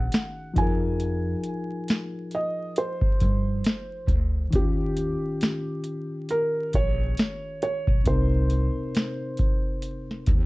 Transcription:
Already playing: D#3 C#4 D#4 F#4 G#4 F#5
0.12 snare, closed hi-hat, tambourine
0.54 F2 F3 D#4, kick, closed hi-hat
0.58 F4 G#4 G#5
0.62 A#4
1.00 closed hi-hat
1.44 closed hi-hat
1.88 snare, closed hi-hat, tambourine
2.31 D#5, closed hi-hat
2.76 C5, closed hi-hat
3.01 kick
3.20 G2, kick, closed hi-hat
3.64 snare, closed hi-hat, tambourine
4.07 D2, kick, closed hi-hat
4.51 D#2 D#3 C#4, kick, closed hi-hat
4.55 F4 G4
4.97 closed hi-hat
5.41 snare, closed hi-hat, tambourine
5.84 closed hi-hat
6.29 A#4, closed hi-hat
6.73 A#1 C#5, kick, closed hi-hat
7.17 snare, closed hi-hat, tambourine
7.62 C#5, closed hi-hat
7.87 B1, kick
8.04 C2 C3 C4 C5, kick, closed hi-hat
8.10 D#4 A#4
8.50 closed hi-hat
8.95 snare, closed hi-hat, tambourine
9.37 kick, closed hi-hat
9.82 closed hi-hat
10.11 snare
10.26 D#2, kick, closed hi-hat

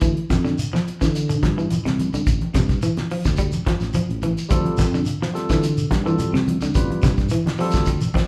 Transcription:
0.01 D2 E3, kick, closed hi-hat, shekere
0.17 closed hi-hat
0.30 F2, kick, snare, closed hi-hat, high conga, shekere
0.45 D3, snare, shekere
0.58 closed hi-hat, shekere
0.73 F3, snare, high conga
0.87 closed hi-hat, shekere
1.01 D3 E3, kick, snare, closed hi-hat, shekere
1.15 closed hi-hat, shekere
1.29 D3, closed hi-hat, shekere
1.42 G2, kick, snare, closed hi-hat, high conga
1.58 E3, shekere
1.70 closed hi-hat, high conga, shekere
1.85 C2 C3, snare, closed hi-hat
1.99 closed hi-hat, high conga, shekere
2.13 C2 D3, closed hi-hat, shekere
2.27 A1, kick, closed hi-hat, shekere
2.41 closed hi-hat, high conga
2.54 G2 C3, kick, snare, closed hi-hat, high conga, shekere
2.69 kick, snare, closed hi-hat, shekere
2.82 E3, closed hi-hat, shekere
2.97 snare, closed hi-hat, high conga
3.11 F3, open hi-hat, shekere
3.25 D2, kick, snare, closed hi-hat, shekere
3.37 G3, kick, closed hi-hat, shekere
3.52 closed hi-hat, high conga, shekere
3.66 F3, kick, snare, closed hi-hat, high conga
3.80 A1, snare, closed hi-hat, shekere
3.93 F3, closed hi-hat, high conga, shekere
4.09 A1, closed hi-hat
4.22 E3, closed hi-hat, high conga, shekere
4.37 closed hi-hat, shekere
4.49 D2 F3 G3 C4 F4 A4, kick, closed hi-hat, shekere
4.65 closed hi-hat, high conga
4.77 F2, kick, snare, closed hi-hat, high conga, shekere
4.94 D3, snare, shekere
5.05 closed hi-hat, shekere
5.22 F3, snare
5.33 G3 C4 F4 A4, snare, closed hi-hat, shekere
5.50 D3 E3, kick, snare, closed hi-hat, shekere
5.63 closed hi-hat, shekere
5.77 closed hi-hat, shekere
5.91 G2, kick, snare, closed hi-hat, high conga
6.03 E3 G3 C4 F4 A4, shekere
6.18 closed hi-hat, high conga, shekere
6.33 C2 C3, snare, closed hi-hat
6.47 closed hi-hat, high conga, shekere
6.61 C2 D3, snare, closed hi-hat, shekere
6.74 A1 G3 C4 F4 B4, kick, closed hi-hat, shekere
6.90 closed hi-hat, high conga
7.02 G2 C3, kick, snare, closed hi-hat, high conga, shekere
7.17 kick, snare, closed hi-hat, shekere
7.29 E3, closed hi-hat, shekere
7.46 snare, closed hi-hat, high conga
7.57 F3 G3 C4 F4 A4, snare, open hi-hat, shekere
7.71 D2, kick, snare, closed hi-hat, shekere
7.85 muted clean electric guitar stroke, kick, closed hi-hat, shekere
8.01 closed hi-hat, high conga, shekere
8.14 F3, kick, snare, closed hi-hat, high conga

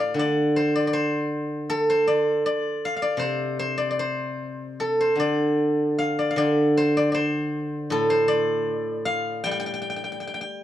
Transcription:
Already playing: A2 A4 C5 F5
0.00 D5
0.14 D3
0.19 D5
0.56 C5
0.75 D5
0.87 D5
0.93 C5
1.70 A4
1.90 C5
2.08 D5
2.46 D5
2.85 F5
2.96 F5
3.02 D5
3.17 C3 C5
3.59 C5
3.78 D5
3.91 D5
3.99 C5
4.80 A4
5.00 C5
5.16 D3
5.20 D5
5.99 F5
6.19 D5
6.31 F5
6.36 D3 D5
6.77 C5
6.97 D5
7.12 C5 D5
7.90 A2 A4
8.10 C5
8.28 D5
9.05 F5
9.44 G3 G5
9.51 G5
9.60 G5
9.66 G5
9.74 G5
9.82 G5
9.90 G5
9.96 G5
10.04 G5
10.12 G5
10.20 G5
10.27 G5
10.34 G5
10.41 G5

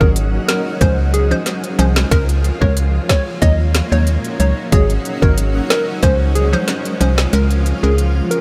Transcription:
Already playing: F#3 G#3 C#4 D#4 F#4
0.00 G#1 F#3 C#4 G#4 A#4, kick
0.16 closed hi-hat
0.48 A#4, snare, closed hi-hat
0.81 C#2 F3 C4 C#4 F4 C5, kick, closed hi-hat
1.14 G#4, closed hi-hat
1.31 F3 C#4 C5
1.46 snare, closed hi-hat
1.64 closed hi-hat
1.79 C2 F3 C#4 C5, closed hi-hat
1.96 snare
2.11 C#2 F3 G#3 A#3 C#4 A#4, kick, closed hi-hat
2.29 closed hi-hat
2.44 closed hi-hat
2.61 C#2 G#3 C#4 A#4 C#5, kick
2.77 closed hi-hat
3.09 C#5, kick, snare, closed hi-hat
3.42 D#2 F#3 C#4 D#4 F#4 C#5 D#5, kick, closed hi-hat
3.75 snare, closed hi-hat
3.92 D#2 F#3 D#4 C#5
4.07 closed hi-hat
4.24 closed hi-hat
4.40 C#2 F#3 D#4 C#5, closed hi-hat
4.72 G#1 G#3 D#4 F#4 G#4 C#5, kick, closed hi-hat
4.90 closed hi-hat
5.05 closed hi-hat
5.22 G#1 G#3 F#4 A#4 C#5, kick
5.38 closed hi-hat
5.70 A#4, snare, closed hi-hat
6.03 C#2 F3 C4 C#4 F4 C5, kick, closed hi-hat
6.35 G#4, closed hi-hat
6.53 F3 C#4 C5
6.68 snare, closed hi-hat
6.85 closed hi-hat
7.00 C2 F3 C#4 C5, closed hi-hat
7.18 snare
7.33 C#2 G#3 A#3 C#4 A#4, closed hi-hat
7.51 closed hi-hat
7.66 closed hi-hat
7.83 C#2 G#3 C#4 G#4 A#4
7.98 closed hi-hat
8.31 A#4, closed hi-hat

